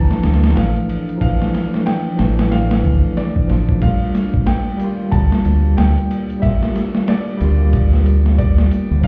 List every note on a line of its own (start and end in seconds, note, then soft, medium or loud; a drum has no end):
0.00 1.24 E3 medium
0.00 1.17 F3 medium
0.00 3.79 A3 medium
0.00 1.20 D4 medium
0.00 3.79 D4 medium
0.00 9.07 D5 medium
0.00 0.57 A5 loud
0.11 snare medium
0.23 0.53 D2 medium
0.23 snare medium
0.23 ride medium
0.34 snare medium
0.34 ride medium
0.43 snare medium
0.43 ride medium
0.50 snare medium
0.50 ride medium
0.55 0.73 A1 medium
0.55 1.20 F5 medium
0.55 snare loud
0.55 ride medium
0.76 ride soft
0.89 ride medium
1.09 ride soft
1.17 2.14 F3 medium
1.17 2.15 D4 medium
1.17 kick loud
1.21 2.17 E3 medium
1.21 1.83 F5 medium
1.21 ride medium
1.42 snare medium
1.54 snare medium
1.54 ride medium
1.74 snare medium
1.86 2.53 G5 loud
1.86 snare loud
1.86 ride medium
2.15 3.45 F3 medium
2.15 3.46 D4 medium
2.15 ride medium
2.19 2.84 A1 loud
2.19 3.48 E3 medium
2.19 snare loud
2.39 snare loud
2.39 ride medium
2.52 3.19 F5 medium
2.52 snare loud
2.52 ride medium
2.71 snare loud
2.71 ride medium
2.84 3.01 D2 loud
2.84 kick medium
2.84 ride medium
3.17 3.84 D5 medium
3.17 snare soft
3.17 ride medium
3.36 kick medium
3.48 3.67 A1 medium
3.48 3.78 F3 medium
3.48 3.79 D4 medium
3.48 3.80 F4 medium
3.48 snare soft
3.48 ride medium
3.69 kick medium
3.79 4.75 G3 medium
3.79 9.00 A#3 medium
3.79 4.77 A#3 medium
3.79 9.00 G4 medium
3.79 kick loud
3.79 ride medium
3.79 shaker soft
3.83 4.79 F4 medium
3.83 4.49 F5 medium
4.01 shaker soft
4.15 snare soft
4.15 ride medium
4.15 shaker medium
4.34 kick loud
4.34 shaker soft
4.46 5.14 G5 loud
4.46 snare loud
4.46 ride medium
4.46 shaker soft
4.69 shaker soft
4.77 6.38 G3 medium
4.77 6.40 A#3 medium
4.77 ride medium
4.77 shaker loud
4.84 6.42 F4 medium
5.00 shaker soft
5.12 5.30 D2 loud
5.12 5.79 A5 loud
5.12 kick loud
5.12 ride medium
5.12 shaker soft
5.32 snare medium
5.32 shaker soft
5.45 5.75 D2 loud
5.45 ride medium
5.45 shaker medium
5.66 shaker soft
5.77 5.95 D2 medium
5.77 6.45 G5 loud
5.77 snare loud
5.77 ride medium
5.77 shaker medium
5.97 ride soft
5.97 shaker soft
6.11 ride medium
6.11 shaker medium
6.30 ride soft
6.30 shaker soft
6.40 7.36 G3 medium
6.40 7.38 A#3 medium
6.40 7.10 E5 medium
6.40 kick loud
6.40 ride medium
6.40 shaker medium
6.47 7.40 F4 medium
6.63 snare soft
6.63 shaker soft
6.76 snare medium
6.76 ride medium
6.76 shaker loud
6.95 snare medium
6.95 shaker soft
7.08 8.37 D5 medium
7.08 snare loud
7.08 ride medium
7.08 shaker soft
7.28 shaker soft
7.37 8.99 G3 medium
7.37 9.00 A#3 medium
7.37 ride medium
7.37 shaker medium
7.41 8.69 D2 loud
7.41 9.02 F4 medium
7.61 shaker soft
7.73 kick loud
7.73 ride medium
7.73 shaker medium
7.93 snare soft
7.93 shaker soft
8.06 ride medium
8.06 shaker medium
8.26 snare soft
8.26 shaker soft
8.38 9.00 D5 medium
8.38 kick loud
8.38 ride medium
8.38 shaker medium
8.58 snare medium
8.58 shaker soft
8.71 ride medium
8.71 shaker loud
8.91 9.07 D2 loud
8.91 shaker soft
9.01 9.07 F3 medium
9.01 9.07 F5 loud
9.01 kick loud
9.01 ride medium